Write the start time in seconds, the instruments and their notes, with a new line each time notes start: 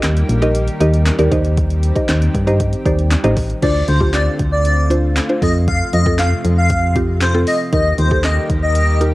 Already playing: analog synth pad D#3 G3 A#3 G4, synth pluck D#4 G4 A#4 D#5
0.03 fm bass D#2, snare, clap, closed hi-hat
0.17 closed hi-hat
0.29 fm bass A#1, closed hi-hat
0.42 synth pluck D#4 G4 A#4 D#5, closed hi-hat
0.55 closed hi-hat
0.68 closed hi-hat
0.80 fm bass D#2, synth pluck D#4 G4 A#4 D#5, closed hi-hat
0.94 closed hi-hat
1.06 snare, clap, closed hi-hat
1.19 fm bass D#2, synth pluck D#4 G4 A#4 D5, closed hi-hat
1.31 fm bass D#2, analog synth pad C4 G4, synth pluck D#4 G4 C5 D#5, kick, closed hi-hat
1.45 closed hi-hat
1.57 kick, closed hi-hat
1.70 closed hi-hat
1.83 closed hi-hat
1.96 synth pluck D#4 G4 C5 D#5, kick, closed hi-hat
2.09 fm bass D#2, snare, clap, closed hi-hat
2.22 closed hi-hat
2.35 fm bass G2, kick, closed hi-hat
2.47 synth pluck D#4 G4 C5 D#5, closed hi-hat
2.60 kick, closed hi-hat
2.73 closed hi-hat
2.85 fm bass D#2, synth pluck D#4 G4 C5 D5, kick, closed hi-hat
2.99 closed hi-hat
3.11 snare, clap, closed hi-hat
3.24 fm bass A1, synth pluck D#4 G4 C5 D#5, closed hi-hat
3.37 kick, open hi-hat
3.50 closed hi-hat
3.62 fm bass D2, analog synth pad D3 A3 C4 F4, synth pluck D4 F4 C5, digital synth lead D5, kick, closed hi-hat, crash
3.88 fm bass D2, digital synth lead C5, closed hi-hat
4.00 synth pluck D4 F4 G4, kick
4.13 digital synth lead D5, snare, clap, closed hi-hat
4.39 fm bass D2, kick, closed hi-hat
4.52 digital synth lead D5
4.65 closed hi-hat
4.90 synth pluck D4 F4 C5, closed hi-hat
5.16 snare, clap, closed hi-hat
5.29 synth pluck D4 F4 C5
5.42 fm bass F2, analog synth pad C3 F3, synth pluck C4 F4 A4, digital synth lead D#5, kick, open hi-hat
5.68 digital synth lead F5, kick, closed hi-hat
5.93 fm bass F2, digital synth lead D#5, closed hi-hat
6.06 synth pluck C4 F4 A4, kick
6.19 digital synth lead F5, snare, clap, closed hi-hat
6.45 fm bass F2, closed hi-hat
6.58 digital synth lead F5
6.70 kick, closed hi-hat
6.96 synth pluck C4 F4 G4, kick, closed hi-hat
7.21 digital synth lead C5, snare, clap, closed hi-hat
7.34 synth pluck C4 F4 A4
7.47 digital synth lead D#5, open hi-hat
7.73 fm bass D#2, analog synth pad D#3 G3 A#3 G4, synth pluck D#4 G4 A#4, digital synth lead D#5, kick, closed hi-hat
7.98 fm bass D#2, digital synth lead C5, closed hi-hat
8.11 synth pluck D#4 G4 A4, kick
8.24 digital synth lead D#5, snare, clap, closed hi-hat
8.50 fm bass D#2, kick, closed hi-hat
8.62 digital synth lead D#5
8.75 closed hi-hat
9.01 synth pluck D#4 G4 A#4, closed hi-hat